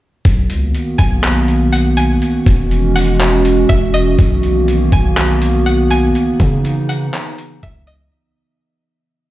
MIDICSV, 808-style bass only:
0, 0, Header, 1, 2, 480
1, 0, Start_track
1, 0, Key_signature, 5, "major"
1, 0, Tempo, 491803
1, 245, Time_signature, 4, 2, 24, 8
1, 9086, End_track
2, 0, Start_track
2, 0, Title_t, "808-style bass"
2, 0, Program_c, 0, 38
2, 245, Note_on_c, 0, 35, 104
2, 485, Note_on_c, 0, 37, 95
2, 500, Note_off_c, 0, 35, 0
2, 713, Note_off_c, 0, 37, 0
2, 965, Note_on_c, 0, 35, 107
2, 2126, Note_off_c, 0, 35, 0
2, 2405, Note_on_c, 0, 28, 104
2, 3566, Note_off_c, 0, 28, 0
2, 3608, Note_on_c, 0, 28, 109
2, 4067, Note_off_c, 0, 28, 0
2, 4086, Note_on_c, 0, 35, 105
2, 4777, Note_off_c, 0, 35, 0
2, 4805, Note_on_c, 0, 35, 108
2, 5966, Note_off_c, 0, 35, 0
2, 6245, Note_on_c, 0, 49, 103
2, 6936, Note_off_c, 0, 49, 0
2, 7448, Note_on_c, 0, 37, 99
2, 7907, Note_off_c, 0, 37, 0
2, 9086, End_track
0, 0, End_of_file